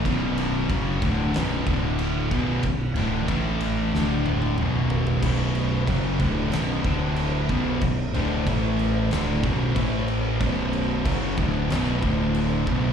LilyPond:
<<
  \new Staff \with { instrumentName = "Distorted electric guitar" } { \clef bass \time 4/4 \key b \minor \tempo 4 = 93 <b,, fis, b,>4 <fis, cis fis>8 <d, a, d>8 <b,, fis, b,>8 <d, a, d>4 <b,, fis, b,>8 | <b,, fis,>8 <d, a, d>8 <a, e a>4 <d, a, d>4 <b,, fis, b,>4 | <b,, fis, b,>4 <fis, cis fis>8 <d, a, d>8 <b,, fis, b,>8 <d, a, d>4 <b,, fis, b,>8 | <b,, fis,>8 <d, a, d>8 <a, e a>4 <d, a, d>8 <b,, fis, b,>8 <a, e a>4 |
<b,, fis, b,>4 <fis, cis fis>8 <d, a, d>8 <b,, fis, b,>8 <d, a, d>4 <b,, fis, b,>8 | }
  \new Staff \with { instrumentName = "Distorted electric guitar" } { \clef bass \time 4/4 \key b \minor <b,, fis, b,>4 <fis, cis fis>8 <d, a, d>8 <b,, fis, b,>8 <d, a, d>4 <b,, fis, b,>8 | <b,, fis,>8 <d, a, d>8 <a, e a>4 <d, a, d>4 <b,, fis, b,>4 | <b,, fis, b,>4 <fis, cis fis>8 <d, a, d>8 <b,, fis, b,>8 <d, a, d>4 <b,, fis, b,>8 | <b,, fis,>8 <d, a, d>8 <a, e a>4 <d, a, d>8 <b,, fis, b,>8 <a, e a>4 |
<b,, fis, b,>4 <fis, cis fis>8 <d, a, d>8 <b,, fis, b,>8 <d, a, d>4 <b,, fis, b,>8 | }
  \new Staff \with { instrumentName = "Distorted electric guitar" } { \clef bass \time 4/4 \key b \minor <b,, fis, b,>4 <fis, cis fis>8 <d, a, d>8 <b,, fis, b,>8 <d, a, d>4 <b,, fis, b,>8 | <b,, fis,>8 <d, a, d>8 <a, e a>4 <d, a, d>4 <b,, fis, b,>4 | <b,, fis, b,>4 <fis, cis fis>8 <d, a, d>8 <b,, fis, b,>8 <d, a, d>4 <b,, fis, b,>8 | <b,, fis,>8 <d, a, d>8 <a, e a>4 <d, a, d>8 <b,, fis, b,>8 <a, e a>4 |
<b,, fis, b,>4 <fis, cis fis>8 <d, a, d>8 <b,, fis, b,>8 <d, a, d>4 <b,, fis, b,>8 | }
  \new Staff \with { instrumentName = "Picked electric bass" } { \clef bass \time 4/4 \key b \minor b,,,4 fis,,8 d,,8 b,,,8 d,,4 b,,,8 | b,,,8 d,,8 a,,4 d,,4 b,,,4 | b,,,4 fis,,8 d,,8 b,,,8 d,,4 b,,,8 | b,,,8 d,,8 a,,4 d,,8 b,,,8 a,,4 |
b,,,4 fis,,8 d,,8 b,,,8 d,,4 b,,,8 | }
  \new DrumStaff \with { instrumentName = "Drums" } \drummode { \time 4/4 <bd cymr>8 cymr8 <bd cymr>8 <bd cymr>8 <cymr sn>8 <bd cymr>8 cymr8 <bd cymr>8 | <bd cymr>8 cymr8 <bd cymr>8 cymr8 sn8 tommh16 tommh16 toml8 tomfh16 tomfh16 | <cymc bd>8 cymc8 <cymc bd>8 <cymc bd>8 <cymc sn>8 <cymc bd>8 cymc8 <cymc bd>8 | <cymc bd>8 cymc8 <cymc bd>8 cymc8 <cymc sn>8 <cymc bd>8 <cymc bd>8 cymc8 |
<cymc bd>8 cymc8 <cymc bd>8 <cymc bd>8 <cymc sn>8 <cymc bd>8 cymc8 <cymc bd>8 | }
>>